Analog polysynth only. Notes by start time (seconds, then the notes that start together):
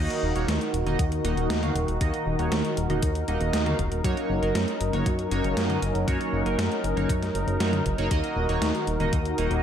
Already playing: A#3 D#4 F#4 D#5
0.36 A#3 D#4 F#4 C#5
0.86 A#3 D#4 F#4 D#5
1.24 A#3 D#4 F#4 D#5
1.63 A#3 D#4 F#4 F5
2.01 A#3 D#4 F#4 D#5
2.39 A#3 D#4 F#4 C#5
2.90 A#3 D#4 F#4 D#5
3.28 A#3 D#4 F#4 D#5
3.66 A#3 D#4 F#4 F5
4.04 A#3 D#4 F#4 C#5
4.42 A#3 D#4 F#4 A#4
4.93 A#3 D#4 F#4 C#5
5.31 A#3 D#4 F#4 C#5
5.69 A#3 D#4 F#4 D#5
6.07 A#3 D#4 F#4 C#5
6.46 A#3 D#4 F#4 A#4
6.97 A#3 D#4 F#4 C#5
7.60 A#3 D#4 F#4 C#5
7.98 A#3 D#4 F#4 C#5
8.11 A#3 D#4 F#4 D#5
8.49 A#3 D#4 F#4 C#5
9.00 A#3 D#4 F#4 D#5
9.38 A#3 D#4 F#4 D#5